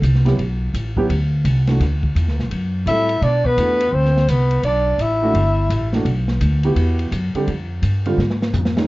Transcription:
0.02 C2, hi-hat pedal, ride
0.15 snare
0.25 F#3 B3 E4 G4, snare, ride
0.38 B1, ride
0.74 A1, hi-hat pedal, ride
0.97 F#3 B3 E4 G4, kick
1.09 D2, ride
1.44 C2, hi-hat pedal, ride
1.67 E3 A3 D4 F#4, snare, ride
1.80 D2, snare, ride
2.03 kick
2.15 E2, hi-hat pedal, ride
2.27 D2, snare
2.39 B1, snare
2.50 F#2, ride
2.86 A2 G3 C4 E4 F#4 A4 E5, hi-hat pedal, ride
3.09 ride
3.21 B2 D4 D5, ride
3.45 B3 B4, kick
3.57 E2 E3 A3 D4 F#4, hi-hat pedal, ride
3.80 ride
3.92 D2 C4 C5
4.05 snare
4.17 snare
4.28 C2 B3 B4, hi-hat pedal, ride
4.51 ride
4.63 B1 D4 D5, ride
4.98 A1 E4 E5, hi-hat pedal, ride
5.22 E3 A3 D4 F#4
5.34 G1, ride
5.70 A1, hi-hat pedal, ride
5.93 E3 A3 D4 F#4, snare
6.05 B1, ride
6.28 snare
6.41 D2, hi-hat pedal, ride
6.63 B3 E4 F#4 G4, ride
6.76 E2, ride
6.99 ride
7.11 F#2, hi-hat pedal, ride
7.34 D3 G3 C4 G4, muted upright bass stroke, ride
7.47 F2, ride
7.82 G2, hi-hat pedal, ride
8.06 D3 G3 C4 F4, ride
8.18 G#2, snare
8.31 snare
8.42 snare
8.53 F2, floor tom, hi-hat pedal
8.65 snare
8.76 D#3 G#3 C#4 D#4, snare

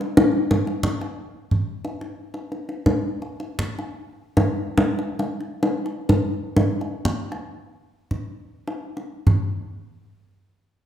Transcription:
0.01 kendang slap
0.17 kendang slap, kendang high, kendang low
0.51 kendang slap, kendang high, kendang low
0.67 kendang slap
0.83 kendang low
1.01 kendang slap
1.51 kendang low
1.85 kendang slap
2.01 kendang slap
2.34 kendang slap
2.52 kendang slap
2.69 kendang slap
2.86 kendang slap, kendang high, kendang low
3.22 kendang slap
3.40 kendang slap
3.59 kendang low
3.79 kendang slap
4.37 kendang high, kendang low
4.78 kendang slap, kendang high, kendang low
4.99 kendang slap
5.19 kendang high
5.41 kendang slap
5.63 kendang slap, kendang high
5.86 kendang slap
6.09 kendang slap, kendang high, kendang low
6.56 kendang slap, kendang high, kendang low
6.81 kendang slap
7.05 kendang low
7.32 kendang slap
8.11 kendang slap, kendang low
8.67 kendang slap
8.97 kendang slap
9.27 kendang low

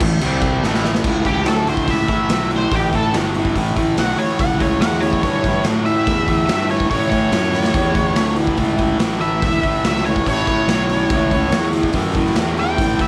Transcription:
0.00 A1 A2 E3, kick, crash
0.21 C2 C3 G3 C4, crash
0.41 kick, crash
0.63 A1 A2 E3 A3, snare
0.74 snare
0.84 snare
0.95 snare
1.04 C#2 A2 E3, kick, crash
1.25 A2 E3 G4, kick, open hi-hat
1.45 D2 A2 F#3 A4, snare, open hi-hat
1.67 A2 E3 C5, open hi-hat
1.77 kick
1.88 C#2 A2 E3 E5, kick, open hi-hat
2.08 A2 E3, muted fingered electric bass stroke, kick, open hi-hat
2.29 B1 A2 F#3, snare, open hi-hat
2.51 A2 E3, open hi-hat
2.56 C5
2.71 A1 A2 E3, kick, open hi-hat
2.75 G4
2.92 A2 E3 A4, kick, open hi-hat
3.13 G1 A2 F#3, snare, open hi-hat
3.34 A2 E3, open hi-hat
3.45 kick
3.55 A1 A2 E3, kick, open hi-hat
3.77 A2 E3, kick, open hi-hat
3.97 B1 A2 F#3 F#5, snare, open hi-hat
4.17 A2 E3 C#5, muted fingered electric bass stroke, open hi-hat
4.39 C#2 A2 E3 F#5, kick, open hi-hat
4.59 A2 E3 C#5, kick, open hi-hat
4.80 E2 A2 F#3 F#5, snare, open hi-hat
4.93 snare
5.00 A2 E3 C#5, open hi-hat
5.13 kick
5.23 G2 A2 E3 C#5, kick, open hi-hat
5.44 A2 E3, kick, open hi-hat
5.64 A2 F#3, snare, open hi-hat
5.85 A2 E3 E5, open hi-hat
6.07 E2 A2 E3, kick, open hi-hat
6.27 A2 E3, kick, open hi-hat
6.46 A2 F#3 E5, snare, open hi-hat
6.50 G2
6.69 A2 E3 C#5, open hi-hat
6.80 kick
6.90 A2 E3 C#5, kick, open hi-hat
7.10 A2 E3 C#5, kick, open hi-hat
7.32 F#2 A2 F#3, snare, open hi-hat
7.53 A2 E3, snare
7.64 snare
7.74 E2 A2 E3, kick, open hi-hat
7.95 A2 E3, kick, open hi-hat
8.16 D2 A2 F#3, snare, open hi-hat
8.36 A2 E3, open hi-hat
8.47 kick
8.57 C#2 A2 E3, kick, open hi-hat
8.78 A2 E3, kick, open hi-hat
8.99 A1 A2 F#3, snare, open hi-hat
9.19 A2 E3 E5, open hi-hat
9.42 E1 A2 E3, kick, open hi-hat
9.63 A2 E3, muted fingered electric bass stroke, kick, open hi-hat
9.84 C#2 A2 F#3 E5, snare, open hi-hat
9.96 snare
10.05 A2 E3 C#5, open hi-hat
10.16 kick
10.26 A1 A2 E3 C#5, kick, open hi-hat
10.47 A2 E3 C#5, muted fingered electric bass stroke, kick, open hi-hat
10.68 B1 A2 F#3, snare, open hi-hat
10.89 A2 E3, open hi-hat
11.10 C#2 A2 E3, kick, open hi-hat
11.31 A2 E3, kick, open hi-hat
11.51 E2 A2 F#3, snare, open hi-hat
11.73 A2 E3, open hi-hat
11.83 kick
11.93 F#2 A2 E3, kick, open hi-hat
12.14 A2 E3, kick, open hi-hat
12.26 snare
12.36 E2 A2 F#3, snare, open hi-hat
12.57 A2 E3 G5, open hi-hat
12.78 A2 E3, kick, open hi-hat
12.99 A2 E3 E5, muted fingered electric bass stroke, kick, open hi-hat

